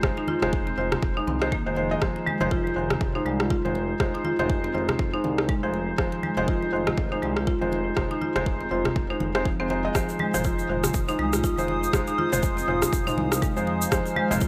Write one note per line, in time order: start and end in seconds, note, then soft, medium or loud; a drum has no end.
0.03 0.13 F1 medium
0.03 0.39 G#3 medium
0.03 0.39 D#4 medium
0.03 0.39 F4 medium
0.03 0.39 C5 medium
0.03 kick loud
0.03 cross-stick medium
0.03 low conga medium
0.17 0.28 D#4 loud
0.17 muted conga soft
0.28 0.41 F4 loud
0.28 high conga loud
0.42 0.72 F1 loud
0.42 0.75 G#3 loud
0.42 0.75 D#4 medium
0.42 0.75 F4 medium
0.42 0.75 C5 loud
0.42 cross-stick medium
0.42 muted conga soft
0.42 high conga medium
0.42 low conga loud
0.53 kick loud
0.67 0.73 C4 medium
0.67 muted conga medium
0.78 0.95 F1 medium
0.78 1.13 G#3 medium
0.78 1.13 D#4 medium
0.78 1.13 F4 medium
0.78 0.91 F4 medium
0.78 1.13 C5 medium
0.78 high conga medium
0.92 cross-stick medium
0.92 muted conga soft
0.92 low conga loud
1.03 1.20 F1 medium
1.03 kick loud
1.17 1.39 G#3 medium
1.17 1.39 D#4 medium
1.17 1.27 D#4 loud
1.17 1.39 F4 medium
1.17 1.39 C5 medium
1.27 1.59 C2 loud
1.27 1.40 C4 medium
1.27 muted conga soft
1.27 high conga loud
1.42 1.51 D#3 medium
1.42 1.54 G#3 loud
1.42 1.54 D#4 medium
1.42 1.54 F4 medium
1.42 1.54 C5 loud
1.42 cross-stick medium
1.52 1.66 A#3 medium
1.52 kick loud
1.52 muted conga soft
1.66 1.96 F1 medium
1.66 1.76 D#3 medium
1.66 1.74 G#3 medium
1.66 1.74 D#4 medium
1.66 1.74 F4 medium
1.66 1.74 C5 loud
1.76 1.85 F3 medium
1.76 1.89 G#3 medium
1.76 1.89 D#4 medium
1.76 1.89 F4 medium
1.76 1.89 C5 medium
1.76 muted conga soft
1.91 1.99 G#3 medium
1.91 1.99 D#4 medium
1.91 1.99 F4 medium
1.91 1.99 D#5 loud
2.02 2.11 F1 medium
2.02 2.09 F3 medium
2.02 2.37 G#3 medium
2.02 2.37 D#4 medium
2.02 2.37 F4 medium
2.02 2.37 C5 loud
2.02 kick loud
2.02 cross-stick medium
2.16 muted conga medium
2.27 2.40 G#3 loud
2.27 high conga loud
2.40 2.70 F1 loud
2.40 2.50 F3 loud
2.40 2.74 G#3 loud
2.40 2.74 D#4 loud
2.40 2.74 F4 medium
2.40 2.74 C5 loud
2.40 muted conga soft
2.40 high conga medium
2.40 low conga medium
2.51 2.64 F4 loud
2.51 kick loud
2.67 muted conga soft
2.76 2.94 F1 medium
2.76 2.90 D#3 medium
2.76 3.12 G#3 medium
2.76 3.12 D#4 medium
2.76 3.12 F4 medium
2.76 3.12 C5 medium
2.90 3.00 C3 medium
2.90 cross-stick medium
2.90 muted conga soft
2.90 low conga loud
3.01 3.18 F1 medium
3.01 kick loud
3.15 3.61 G#3 medium
3.15 3.61 D#4 medium
3.15 3.25 D#4 loud
3.15 3.61 F4 medium
3.15 3.61 C5 medium
3.25 3.57 C2 loud
3.25 3.39 G#3 loud
3.25 muted conga soft
3.40 3.46 F4 medium
3.40 cross-stick medium
3.50 3.63 F4 loud
3.50 kick loud
3.50 muted conga soft
3.65 3.94 F1 medium
3.65 3.98 G#3 medium
3.65 3.98 D#4 medium
3.65 3.98 F4 medium
3.65 3.98 C5 loud
3.65 high conga loud
3.75 muted conga soft
3.75 high conga medium
4.00 4.09 F1 loud
4.00 4.36 G#3 medium
4.00 4.36 D#4 medium
4.00 4.36 F4 medium
4.00 4.36 C5 loud
4.00 kick loud
4.00 cross-stick medium
4.00 low conga medium
4.14 4.24 D#4 medium
4.14 muted conga medium
4.25 4.38 F4 loud
4.25 high conga loud
4.39 4.69 F1 loud
4.39 4.72 G#3 loud
4.39 4.72 D#4 medium
4.39 4.72 F4 medium
4.39 4.72 C5 loud
4.39 muted conga soft
4.39 high conga medium
4.39 low conga medium
4.50 kick loud
4.64 4.70 C4 medium
4.64 muted conga medium
4.74 4.92 F1 medium
4.74 5.10 G#3 medium
4.74 5.10 D#4 medium
4.74 4.87 F4 medium
4.74 5.10 F4 medium
4.74 5.10 C5 medium
4.74 high conga medium
4.89 cross-stick medium
4.89 muted conga soft
4.89 low conga medium
4.99 5.17 F1 medium
4.99 kick loud
5.13 5.60 G#3 medium
5.13 5.60 D#4 medium
5.13 5.24 D#4 loud
5.13 5.60 F4 medium
5.13 5.60 C5 medium
5.24 5.55 C2 loud
5.24 muted conga soft
5.24 high conga medium
5.38 5.44 C3 medium
5.38 cross-stick medium
5.49 5.62 G#3 medium
5.49 kick loud
5.49 muted conga soft
5.63 5.93 F1 medium
5.63 5.73 F3 medium
5.63 5.96 G#3 medium
5.63 5.96 D#4 medium
5.63 5.96 F4 medium
5.63 5.96 C5 medium
5.74 muted conga medium
5.98 6.08 F1 medium
5.98 6.06 F3 medium
5.98 6.34 G#3 medium
5.98 6.34 D#4 medium
5.98 6.34 F4 medium
5.98 6.34 C5 loud
5.98 kick loud
5.98 cross-stick medium
6.12 muted conga medium
6.23 6.37 G#3 loud
6.23 high conga loud
6.37 6.67 F1 loud
6.37 6.47 F3 loud
6.37 6.70 G#3 loud
6.37 6.70 D#4 medium
6.37 6.70 F4 loud
6.37 6.70 C5 loud
6.37 muted conga soft
6.37 high conga medium
6.37 low conga medium
6.48 6.61 F4 loud
6.48 kick loud
6.62 muted conga medium
6.73 6.90 F1 medium
6.73 6.86 D#3 medium
6.73 7.08 G#3 medium
6.73 7.08 D#4 medium
6.73 7.08 F4 medium
6.73 7.08 C5 medium
6.87 6.97 C3 medium
6.87 cross-stick medium
6.87 muted conga soft
6.87 low conga loud
6.98 7.15 F1 medium
6.98 kick loud
7.12 7.58 G#3 medium
7.12 7.58 D#4 medium
7.12 7.22 D#4 loud
7.12 7.58 F4 medium
7.12 7.58 C5 medium
7.22 7.54 C2 loud
7.22 7.36 G#3 loud
7.22 muted conga medium
7.37 7.42 F4 medium
7.37 cross-stick medium
7.47 7.60 F4 loud
7.47 kick loud
7.47 muted conga soft
7.61 7.91 F1 medium
7.61 7.94 G#3 medium
7.61 7.94 D#4 medium
7.61 7.94 F4 medium
7.61 7.94 C5 loud
7.61 high conga medium
7.72 muted conga medium
7.72 high conga medium
7.96 8.06 F1 loud
7.96 8.32 G#3 medium
7.96 8.32 D#4 medium
7.96 8.32 F4 medium
7.96 8.32 C5 loud
7.96 kick loud
7.96 cross-stick medium
7.96 low conga medium
8.11 8.21 D#4 loud
8.11 muted conga medium
8.21 8.34 F4 medium
8.21 high conga loud
8.36 8.65 F1 loud
8.36 8.69 G#3 loud
8.36 8.69 D#4 medium
8.36 8.69 F4 medium
8.36 8.69 C5 loud
8.36 cross-stick medium
8.36 muted conga soft
8.36 high conga medium
8.36 low conga medium
8.46 kick loud
8.61 8.66 C4 medium
8.61 muted conga medium
8.71 8.89 F1 medium
8.71 9.07 G#3 medium
8.71 9.07 D#4 medium
8.71 9.07 F4 medium
8.71 8.84 F4 medium
8.71 9.07 C5 medium
8.71 high conga medium
8.85 cross-stick medium
8.85 muted conga soft
8.85 low conga loud
8.96 9.14 F1 medium
8.96 kick loud
9.10 9.32 G#3 medium
9.10 9.32 D#4 medium
9.10 9.20 D#4 loud
9.10 9.32 F4 medium
9.10 9.32 C5 medium
9.20 9.52 F1 loud
9.20 muted conga soft
9.20 high conga loud
9.35 9.47 G#3 loud
9.35 9.45 C4 medium
9.35 9.47 D#4 medium
9.35 9.47 F4 medium
9.35 9.47 C5 loud
9.35 cross-stick medium
9.45 9.53 F3 medium
9.45 kick loud
9.45 muted conga soft
9.60 9.89 F1 medium
9.60 9.68 G#3 medium
9.60 9.70 C4 loud
9.60 9.68 D#4 medium
9.60 9.68 F4 medium
9.60 9.68 C5 medium
9.70 9.82 G#3 medium
9.70 9.82 D#4 medium
9.70 9.82 F4 medium
9.70 9.82 C5 loud
9.70 muted conga medium
9.85 9.93 G#3 medium
9.85 9.93 D#4 medium
9.85 9.93 F4 medium
9.85 9.93 D#5 loud
9.95 10.04 F1 medium
9.95 10.03 F3 medium
9.95 10.31 G#3 medium
9.95 10.31 D#4 medium
9.95 10.31 F4 medium
9.95 14.48 C5 medium
9.95 10.31 C5 loud
9.95 14.48 F5 medium
9.95 14.48 G#5 medium
9.95 13.91 D#6 loud
9.95 kick loud
9.95 cross-stick medium
9.95 shaker medium
10.09 muted conga soft
10.09 shaker soft
10.19 10.34 G#3 loud
10.19 high conga loud
10.34 10.64 F1 loud
10.34 10.44 F3 loud
10.34 10.67 G#3 loud
10.34 10.67 D#4 medium
10.34 10.67 F4 medium
10.34 10.67 C5 loud
10.34 mid tom medium
10.34 muted conga soft
10.34 high conga medium
10.34 low conga medium
10.34 shaker medium
10.44 10.58 F4 loud
10.44 kick loud
10.44 shaker medium
10.59 muted conga medium
10.59 shaker soft
10.69 10.87 F1 loud
10.69 10.83 D#3 medium
10.69 11.05 G#3 medium
10.69 11.05 D#4 medium
10.69 11.05 F4 medium
10.69 11.05 C5 medium
10.69 mid tom medium
10.84 10.94 C3 medium
10.84 cross-stick medium
10.84 muted conga soft
10.84 low conga loud
10.84 shaker medium
10.94 11.12 F1 medium
10.94 kick loud
10.94 shaker medium
11.08 11.55 G#3 medium
11.08 11.55 D#4 medium
11.08 11.19 D#4 loud
11.08 11.55 F4 medium
11.08 11.55 C5 medium
11.08 shaker soft
11.19 11.50 C2 loud
11.19 11.33 G#3 loud
11.19 muted conga medium
11.33 11.39 F4 medium
11.33 cross-stick medium
11.33 mid tom medium
11.33 shaker medium
11.43 11.57 F4 loud
11.43 kick loud
11.43 muted conga soft
11.43 shaker medium
11.57 11.88 F1 medium
11.57 11.91 G#3 medium
11.57 11.91 D#4 medium
11.57 11.91 F4 medium
11.57 11.91 C5 loud
11.57 high conga medium
11.57 shaker soft
11.68 muted conga medium
11.68 high conga medium
11.83 shaker medium
11.93 12.03 F1 medium
11.93 12.29 G#3 medium
11.93 12.29 D#4 medium
11.93 12.29 F4 medium
11.93 12.29 C5 loud
11.93 kick loud
11.93 cross-stick loud
11.93 low conga medium
11.93 shaker medium
12.07 12.18 D#4 loud
12.07 muted conga medium
12.07 shaker soft
12.18 12.31 F4 loud
12.18 high conga loud
12.32 12.62 F1 loud
12.32 12.65 G#3 loud
12.32 12.65 D#4 medium
12.32 12.65 F4 medium
12.32 12.65 C5 loud
12.32 mid tom medium
12.32 muted conga soft
12.32 high conga medium
12.32 low conga loud
12.32 shaker medium
12.43 kick loud
12.43 shaker medium
12.57 12.63 C4 medium
12.57 muted conga medium
12.57 shaker soft
12.68 12.85 F1 medium
12.68 13.03 G#3 medium
12.68 13.03 D#4 medium
12.68 12.81 F4 medium
12.68 13.03 F4 medium
12.68 13.04 C5 medium
12.68 mid tom medium
12.68 high conga medium
12.82 cross-stick medium
12.82 muted conga soft
12.82 low conga loud
12.82 shaker medium
12.93 13.10 F1 medium
12.93 kick loud
12.93 shaker medium
13.07 13.53 G#3 medium
13.07 13.53 D#4 medium
13.07 13.17 D#4 loud
13.07 13.53 F4 medium
13.07 13.53 C5 medium
13.07 mid tom medium
13.07 shaker soft
13.18 13.49 C2 loud
13.18 muted conga medium
13.18 high conga loud
13.32 13.37 C3 medium
13.32 cross-stick medium
13.32 shaker medium
13.42 13.56 G#3 medium
13.42 kick loud
13.42 muted conga soft
13.42 shaker medium
13.57 13.86 F1 medium
13.57 13.66 F3 medium
13.57 13.89 G#3 medium
13.57 13.89 D#4 medium
13.57 13.89 F4 medium
13.57 13.89 C5 loud
13.57 shaker soft
13.67 muted conga medium
13.82 shaker medium
13.92 14.01 F1 loud
13.92 14.00 F3 medium
13.92 14.28 G#3 medium
13.92 14.28 D#4 medium
13.92 14.28 F4 medium
13.92 14.28 C5 loud
13.92 14.48 F6 medium
13.92 kick loud
13.92 cross-stick loud
13.92 shaker medium
14.06 muted conga soft
14.06 shaker soft
14.16 14.30 G#3 loud
14.16 high conga loud
14.31 14.48 F1 loud
14.31 14.40 F3 loud
14.31 14.48 G#3 loud
14.31 14.48 D#4 medium
14.31 14.48 F4 medium
14.31 14.48 C5 loud
14.31 mid tom medium
14.31 muted conga soft
14.31 high conga medium
14.31 low conga medium
14.31 shaker medium
14.41 14.48 F4 loud
14.41 kick loud
14.41 shaker medium